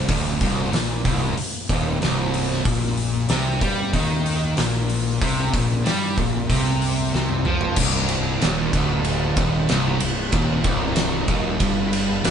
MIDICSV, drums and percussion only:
0, 0, Header, 1, 2, 480
1, 0, Start_track
1, 0, Key_signature, -3, "minor"
1, 0, Tempo, 639659
1, 69, Time_signature, 4, 2, 24, 8
1, 9233, End_track
2, 0, Start_track
2, 0, Title_t, "Drums"
2, 64, Note_on_c, 9, 46, 93
2, 66, Note_on_c, 9, 36, 109
2, 139, Note_off_c, 9, 46, 0
2, 141, Note_off_c, 9, 36, 0
2, 306, Note_on_c, 9, 46, 66
2, 308, Note_on_c, 9, 36, 101
2, 381, Note_off_c, 9, 46, 0
2, 383, Note_off_c, 9, 36, 0
2, 549, Note_on_c, 9, 46, 73
2, 557, Note_on_c, 9, 38, 103
2, 624, Note_off_c, 9, 46, 0
2, 632, Note_off_c, 9, 38, 0
2, 788, Note_on_c, 9, 46, 60
2, 789, Note_on_c, 9, 36, 91
2, 863, Note_off_c, 9, 46, 0
2, 864, Note_off_c, 9, 36, 0
2, 1031, Note_on_c, 9, 46, 76
2, 1106, Note_off_c, 9, 46, 0
2, 1271, Note_on_c, 9, 36, 105
2, 1273, Note_on_c, 9, 46, 58
2, 1347, Note_off_c, 9, 36, 0
2, 1348, Note_off_c, 9, 46, 0
2, 1515, Note_on_c, 9, 46, 70
2, 1522, Note_on_c, 9, 38, 96
2, 1590, Note_off_c, 9, 46, 0
2, 1598, Note_off_c, 9, 38, 0
2, 1755, Note_on_c, 9, 46, 59
2, 1830, Note_off_c, 9, 46, 0
2, 1881, Note_on_c, 9, 38, 37
2, 1956, Note_off_c, 9, 38, 0
2, 1992, Note_on_c, 9, 36, 109
2, 1994, Note_on_c, 9, 46, 79
2, 2067, Note_off_c, 9, 36, 0
2, 2069, Note_off_c, 9, 46, 0
2, 2231, Note_on_c, 9, 46, 61
2, 2307, Note_off_c, 9, 46, 0
2, 2467, Note_on_c, 9, 46, 69
2, 2474, Note_on_c, 9, 38, 107
2, 2542, Note_off_c, 9, 46, 0
2, 2549, Note_off_c, 9, 38, 0
2, 2712, Note_on_c, 9, 36, 97
2, 2713, Note_on_c, 9, 46, 54
2, 2787, Note_off_c, 9, 36, 0
2, 2788, Note_off_c, 9, 46, 0
2, 2953, Note_on_c, 9, 36, 104
2, 2954, Note_on_c, 9, 46, 76
2, 3028, Note_off_c, 9, 36, 0
2, 3029, Note_off_c, 9, 46, 0
2, 3196, Note_on_c, 9, 46, 58
2, 3271, Note_off_c, 9, 46, 0
2, 3430, Note_on_c, 9, 46, 75
2, 3437, Note_on_c, 9, 38, 114
2, 3505, Note_off_c, 9, 46, 0
2, 3512, Note_off_c, 9, 38, 0
2, 3673, Note_on_c, 9, 46, 60
2, 3748, Note_off_c, 9, 46, 0
2, 3914, Note_on_c, 9, 36, 116
2, 3916, Note_on_c, 9, 46, 93
2, 3989, Note_off_c, 9, 36, 0
2, 3991, Note_off_c, 9, 46, 0
2, 4154, Note_on_c, 9, 36, 109
2, 4157, Note_on_c, 9, 46, 63
2, 4229, Note_off_c, 9, 36, 0
2, 4232, Note_off_c, 9, 46, 0
2, 4397, Note_on_c, 9, 46, 73
2, 4404, Note_on_c, 9, 38, 109
2, 4472, Note_off_c, 9, 46, 0
2, 4479, Note_off_c, 9, 38, 0
2, 4635, Note_on_c, 9, 36, 103
2, 4641, Note_on_c, 9, 46, 54
2, 4710, Note_off_c, 9, 36, 0
2, 4716, Note_off_c, 9, 46, 0
2, 4875, Note_on_c, 9, 36, 95
2, 4876, Note_on_c, 9, 46, 87
2, 4950, Note_off_c, 9, 36, 0
2, 4951, Note_off_c, 9, 46, 0
2, 5117, Note_on_c, 9, 46, 59
2, 5192, Note_off_c, 9, 46, 0
2, 5363, Note_on_c, 9, 38, 64
2, 5438, Note_off_c, 9, 38, 0
2, 5470, Note_on_c, 9, 48, 69
2, 5545, Note_off_c, 9, 48, 0
2, 5591, Note_on_c, 9, 45, 87
2, 5666, Note_off_c, 9, 45, 0
2, 5709, Note_on_c, 9, 43, 93
2, 5784, Note_off_c, 9, 43, 0
2, 5825, Note_on_c, 9, 49, 127
2, 5831, Note_on_c, 9, 36, 116
2, 5900, Note_off_c, 9, 49, 0
2, 5906, Note_off_c, 9, 36, 0
2, 6068, Note_on_c, 9, 51, 73
2, 6143, Note_off_c, 9, 51, 0
2, 6314, Note_on_c, 9, 51, 94
2, 6322, Note_on_c, 9, 38, 117
2, 6389, Note_off_c, 9, 51, 0
2, 6397, Note_off_c, 9, 38, 0
2, 6553, Note_on_c, 9, 36, 100
2, 6555, Note_on_c, 9, 51, 75
2, 6628, Note_off_c, 9, 36, 0
2, 6630, Note_off_c, 9, 51, 0
2, 6788, Note_on_c, 9, 51, 93
2, 6863, Note_off_c, 9, 51, 0
2, 7028, Note_on_c, 9, 51, 74
2, 7031, Note_on_c, 9, 36, 112
2, 7103, Note_off_c, 9, 51, 0
2, 7106, Note_off_c, 9, 36, 0
2, 7269, Note_on_c, 9, 51, 88
2, 7277, Note_on_c, 9, 38, 113
2, 7344, Note_off_c, 9, 51, 0
2, 7352, Note_off_c, 9, 38, 0
2, 7507, Note_on_c, 9, 51, 88
2, 7582, Note_off_c, 9, 51, 0
2, 7745, Note_on_c, 9, 51, 103
2, 7750, Note_on_c, 9, 36, 112
2, 7820, Note_off_c, 9, 51, 0
2, 7825, Note_off_c, 9, 36, 0
2, 7985, Note_on_c, 9, 51, 82
2, 7988, Note_on_c, 9, 36, 108
2, 8060, Note_off_c, 9, 51, 0
2, 8063, Note_off_c, 9, 36, 0
2, 8223, Note_on_c, 9, 51, 102
2, 8230, Note_on_c, 9, 38, 108
2, 8298, Note_off_c, 9, 51, 0
2, 8305, Note_off_c, 9, 38, 0
2, 8464, Note_on_c, 9, 51, 69
2, 8467, Note_on_c, 9, 36, 105
2, 8539, Note_off_c, 9, 51, 0
2, 8542, Note_off_c, 9, 36, 0
2, 8704, Note_on_c, 9, 51, 104
2, 8708, Note_on_c, 9, 36, 96
2, 8779, Note_off_c, 9, 51, 0
2, 8783, Note_off_c, 9, 36, 0
2, 8951, Note_on_c, 9, 51, 77
2, 9026, Note_off_c, 9, 51, 0
2, 9188, Note_on_c, 9, 51, 95
2, 9195, Note_on_c, 9, 38, 119
2, 9233, Note_off_c, 9, 38, 0
2, 9233, Note_off_c, 9, 51, 0
2, 9233, End_track
0, 0, End_of_file